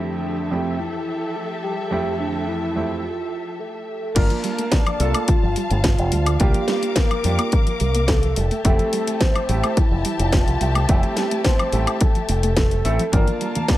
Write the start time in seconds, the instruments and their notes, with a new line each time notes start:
Already playing: grand piano F2 A3 C4 E4 G4, string section F3 G4 A4 E5, soft synth lead D4
0.51 grand piano F2 A3 C4 E4 G4, soft synth lead C4
0.80 soft synth lead E4
1.36 soft synth lead A4
1.64 soft synth lead G4
1.91 grand piano F2 A3 C4 E4 G4
2.20 soft synth lead D4
2.48 soft synth lead E4
2.76 grand piano F2 A3 C4 E4 G4
3.04 soft synth lead F4
3.60 soft synth lead A4
4.15 fingered electric bass G1, synth arpeggio sound D3, grand piano A#3 D4 F4 A#4, soft synth lead A#4, string section F5 A5, kick, closed hi-hat, crash
4.30 synth arpeggio sound F3, closed hi-hat
4.44 synth arpeggio sound G3, open hi-hat
4.59 synth arpeggio sound A3, closed hi-hat
4.72 synth arpeggio sound D3, soft synth lead D5, kick, snare, closed hi-hat
4.87 synth arpeggio sound F3, closed hi-hat, high woodblock
5.00 fingered electric bass C2, synth arpeggio sound G3, grand piano A#3 D4 F4 A4, open hi-hat
5.14 synth arpeggio sound A3, closed hi-hat, high woodblock
5.28 synth arpeggio sound D3, soft synth lead F4, muted fingered electric bass stroke, kick, closed hi-hat
5.43 fingered electric bass G1, synth arpeggio sound F3
5.56 synth arpeggio sound G3, open hi-hat
5.71 fingered electric bass G1, synth arpeggio sound A3, closed hi-hat
5.84 synth arpeggio sound D3, soft synth lead F4, kick, snare, closed hi-hat
5.99 fingered electric bass F1, synth arpeggio sound F3, closed hi-hat
6.12 fingered electric bass D2, synth arpeggio sound G3, open hi-hat
6.26 synth arpeggio sound A3, closed hi-hat, high woodblock
6.40 fingered electric bass C2, synth arpeggio sound D3, grand piano A#3 D4 F4 G4, soft synth lead G4, string section A#4 D6, kick, closed hi-hat
6.54 synth arpeggio sound F3, closed hi-hat
6.68 synth arpeggio sound G3, snare, open hi-hat
6.83 synth arpeggio sound A#3, closed hi-hat
6.96 synth arpeggio sound D3, soft synth lead A#4, kick, snare, closed hi-hat
7.11 synth arpeggio sound F3, closed hi-hat, high woodblock
7.24 fingered electric bass F2, synth arpeggio sound G3, grand piano A#3 D4 F4 G4, open hi-hat
7.39 synth arpeggio sound A#3, closed hi-hat, high woodblock
7.52 synth arpeggio sound D3, soft synth lead A#4, kick, closed hi-hat
7.67 synth arpeggio sound F3, closed hi-hat
7.80 fingered electric bass C2, synth arpeggio sound G3, open hi-hat
7.95 synth arpeggio sound A#3, closed hi-hat
8.08 synth arpeggio sound D3, soft synth lead A4, kick, snare, closed hi-hat
8.23 synth arpeggio sound F3, closed hi-hat
8.36 fingered electric bass F1, synth arpeggio sound G3, string section G4 E5 A5, open hi-hat
8.51 synth arpeggio sound A3, open hi-hat
8.64 fingered electric bass F1, synth arpeggio sound E3, grand piano A3 C4 E4 G4, soft synth lead A4, kick, closed hi-hat
8.79 synth arpeggio sound F3, closed hi-hat
8.93 synth arpeggio sound G3, open hi-hat
9.07 synth arpeggio sound A3, closed hi-hat
9.21 synth arpeggio sound E3, soft synth lead C5, kick, snare, closed hi-hat
9.36 synth arpeggio sound F3, closed hi-hat, high woodblock
9.49 fingered electric bass A1, synth arpeggio sound G3, grand piano A3 C4 E4 G4, open hi-hat
9.64 synth arpeggio sound A3, closed hi-hat, high woodblock
9.77 synth arpeggio sound E3, soft synth lead E4, muted fingered electric bass stroke, kick, closed hi-hat
9.91 fingered electric bass F1, synth arpeggio sound F3
10.05 synth arpeggio sound G3, open hi-hat
10.19 fingered electric bass F1, synth arpeggio sound A3, closed hi-hat
10.32 synth arpeggio sound E3, soft synth lead F4, kick, snare, closed hi-hat
10.47 fingered electric bass C2, synth arpeggio sound F3, closed hi-hat
10.61 fingered electric bass C2, synth arpeggio sound G3, open hi-hat
10.75 synth arpeggio sound A3, closed hi-hat, high woodblock
10.89 fingered electric bass F1, synth arpeggio sound E3, grand piano A3 C4 E4 G4, soft synth lead G4, kick, closed hi-hat
11.03 synth arpeggio sound F3, closed hi-hat
11.16 synth arpeggio sound G3, snare, open hi-hat
11.31 synth arpeggio sound A3, closed hi-hat
11.44 synth arpeggio sound E3, soft synth lead C5, kick, snare, closed hi-hat
11.59 synth arpeggio sound F3, closed hi-hat, high woodblock
11.73 fingered electric bass A1, synth arpeggio sound G3, grand piano A3 C4 E4 G4, open hi-hat
11.87 synth arpeggio sound A3, closed hi-hat, high woodblock
12.01 synth arpeggio sound E3, soft synth lead A4, kick, closed hi-hat
12.15 synth arpeggio sound F3, closed hi-hat
12.29 fingered electric bass F1, synth arpeggio sound A3, open hi-hat
12.43 synth arpeggio sound A3, closed hi-hat
12.57 synth arpeggio sound F3, soft synth lead A4, kick, snare, closed hi-hat
12.71 synth arpeggio sound G3, closed hi-hat
12.85 fingered electric bass A1, grand piano A3 C4 E4 A4, synth arpeggio sound A3, open hi-hat
12.99 synth arpeggio sound F3, open hi-hat
13.12 fingered electric bass G1, synth arpeggio sound D3, grand piano A#3 D4 F4 A#4, soft synth lead A#4, string section F5 A5, kick, closed hi-hat, high conga
13.28 synth arpeggio sound F3, closed hi-hat
13.41 synth arpeggio sound G3, open hi-hat
13.55 synth arpeggio sound A3, closed hi-hat, high conga
13.68 synth arpeggio sound D3, soft synth lead D5, kick, snare, closed hi-hat